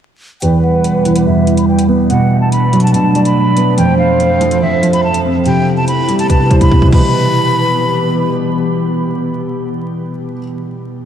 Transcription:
0.42 E2 B2 G3 B4 G5, closed hi-hat
0.63 F#5
0.84 closed hi-hat
1.05 E3, closed hi-hat
1.15 closed hi-hat
1.26 E2 E5
1.47 E3, closed hi-hat
1.57 B5, closed hi-hat
1.68 G5
1.79 closed hi-hat
1.88 B3
2.10 B2 A3 D4 F#5, closed hi-hat
2.41 A5
2.52 B5, closed hi-hat
2.73 F#3, closed hi-hat
2.80 A5, closed hi-hat
2.87 closed hi-hat
2.94 B2 A5, closed hi-hat
3.15 F#3 D5, closed hi-hat
3.25 B5, closed hi-hat
3.57 B3, closed hi-hat
3.78 F2 F3 A4 C5 G5, closed hi-hat
3.99 F5
4.20 closed hi-hat
4.41 F3, closed hi-hat
4.51 closed hi-hat
4.62 F2 E5
4.82 F3, closed hi-hat
4.93 B5, closed hi-hat
5.04 A5
5.14 closed hi-hat
5.25 C4
5.45 C3 B3 E4 G5, closed hi-hat
5.77 A5
5.88 B5, closed hi-hat
6.08 G3, closed hi-hat
6.19 A5, closed hi-hat
6.29 C3 B4 A5, kick, closed hi-hat
6.50 G3 C5, kick, closed hi-hat
6.61 B5, kick, closed hi-hat
6.71 kick
6.82 kick
6.87 B2
6.91 E3 G3 B3 G4 B4 B5, kick, crash
6.99 B3

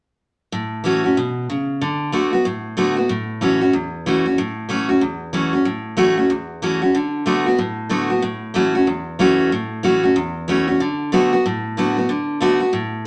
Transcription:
0.52 A2
0.84 E3 A3 C#4 F#4
1.04 C#4 F#4
1.17 B2
1.50 C#3
1.81 D3
2.12 D3 A3 B3 F#4
2.33 B3 F#4
2.45 A2
2.77 D3 A3 B3 F#4
2.97 B3 F#4
3.09 A2
3.41 E3 A3 C#4 F#4
3.61 C#4 F#4
3.73 E2
4.06 E3 A3 C#4 F#4
4.26 C#4 F#4
4.38 A2
4.69 E3 A3 C#4 F#4
4.89 C#4 F#4
5.01 E2
5.33 E3 A3 C#4 F#4
5.53 C#4 F#4
5.65 A2
5.97 E3 A3 C#4 F#4
6.17 C#4 F#4
6.30 E2
6.62 E3 A3 C#4 F#4
6.82 C#4 F#4
6.95 D3
7.26 D3 A3 B3 F#4
7.46 B3 F#4
7.59 A2
7.89 D3 A3 B3 F#4
8.10 B3 F#4
8.22 A2
8.54 E3 A3 C#4 F#4
8.75 C#4 F#4
8.87 E2
9.19 E3 A3 C#4 F#4
9.52 A2
9.83 E3 A3 C#4 F#4
10.03 C#4 F#4
10.16 E2
10.48 E3 A3 C#4 F#4
10.68 C#4 F#4
10.80 D3
11.12 D3 A3 B3 F#4
11.33 B3 F#4
11.46 A2
11.77 D3 A3 B3 F#4
11.97 B3 F#4
12.09 D3
12.40 D3 A3 B3 F#4
12.60 B3 F#4
12.73 A2

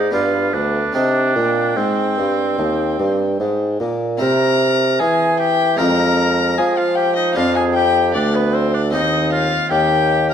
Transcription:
Already playing: G#2 D#4 F4 D5
0.11 G2 B3 D4 F4 B4
0.53 D2 D4
0.93 C3 C4 D4 D#4 G5
1.36 A#2
1.76 G#2 C4
2.18 G2
2.58 D#2
3.00 G2
3.40 G#2
3.80 A#2
4.18 C3 C4 E4 A#4 A#5
4.99 E3 G#4 G#5
5.39 G4 G5
5.76 G#3 C4 F4 A#4 A#5
5.80 F2
6.58 F3 G#4 G#5
6.77 F4 F5
6.95 G4 G5
7.16 D#4 D#5
7.34 F2 B3 D4 F4 F5
7.56 G#4 G#5
7.73 G4 G5
8.14 D2 D4 D5
8.35 B3 B4
8.53 C4 C5
8.74 D4 D5
8.90 D#2 C4 D#4 D#5
9.32 F4 F5
9.71 D#2 G4 G5
10.30 A#4

